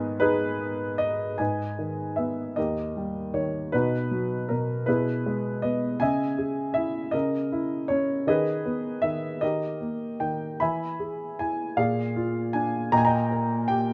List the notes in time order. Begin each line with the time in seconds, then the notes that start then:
Already playing: G#2 D#3 B3 B4 D#5 G#5
0.20 D#4 G#4 B4
0.98 D#5
1.38 G#2 B4 D#5 G#5
1.79 D#3
2.16 B3 E5
2.56 D#2 G4 A#4 D#5
2.97 G3
3.34 D#3 C#5
3.72 B2 D#4 F#4 B4
4.11 F#3
4.49 B2 A#4
4.86 B2 E4 G#4 B4
5.26 G#3
5.62 B3 D#5
6.00 C#3 D#5 E5 G#5
6.38 G#4
6.74 E4 E5
7.11 C#3 A#4 D#5
7.52 E4
7.88 C#4 C#5
8.27 D#3 G#4 B4 D#5
8.65 B3
9.02 D#3 E5
9.41 D#3 G4 A#4 D#5
9.81 A#3
10.20 D#3 G5
10.60 E3 E5 G#5 B5
11.00 G#4
11.39 E4 G#5
11.77 A#2 G#4 D5 F5
12.16 F4
12.53 D4 G#5
12.92 A#2 D#5 G5 A#5
12.98 G#5
13.05 D#5 G5 A#5
13.31 A#4
13.68 G4 G5